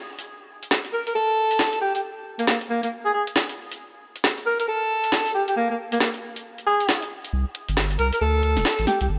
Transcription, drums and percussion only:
0.19 closed hi-hat medium
0.63 closed hi-hat medium
0.71 snare loud
0.85 closed hi-hat soft
1.07 closed hi-hat medium
1.51 closed hi-hat medium
1.59 snare loud
1.73 closed hi-hat soft
1.95 closed hi-hat medium
2.39 closed hi-hat medium
2.47 snare loud
2.61 closed hi-hat soft
2.83 closed hi-hat medium
3.27 closed hi-hat medium
3.36 snare loud
3.49 closed hi-hat medium
3.72 closed hi-hat medium
4.16 closed hi-hat medium
4.24 snare loud
4.38 closed hi-hat soft
4.60 closed hi-hat medium
5.04 closed hi-hat medium
5.12 snare loud
5.26 closed hi-hat medium
5.48 closed hi-hat medium
5.92 closed hi-hat medium
6.00 snare loud
6.14 closed hi-hat soft
6.36 closed hi-hat medium
6.58 closed hi-hat soft
6.80 closed hi-hat medium
6.89 snare loud
7.02 closed hi-hat medium
7.25 closed hi-hat medium
7.55 closed hi-hat loud
7.69 closed hi-hat medium
7.77 snare loud
7.91 closed hi-hat soft
7.99 closed hi-hat loud
8.13 closed hi-hat medium
8.43 closed hi-hat loud
8.57 snare soft
8.57 closed hi-hat medium
8.65 snare loud
8.79 closed hi-hat soft
8.87 snare medium
8.87 closed hi-hat loud
9.01 closed hi-hat medium

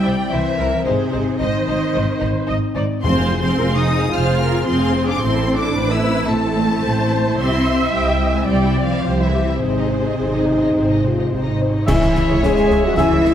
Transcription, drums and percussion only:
11.88 concert bass drum medium
11.88 snare medium
11.88 crash medium
12.02 snare medium
12.15 snare medium
12.43 concert bass drum medium
12.43 snare medium
12.56 snare medium
12.71 snare soft
12.98 concert bass drum medium
12.98 snare medium
13.25 snare soft

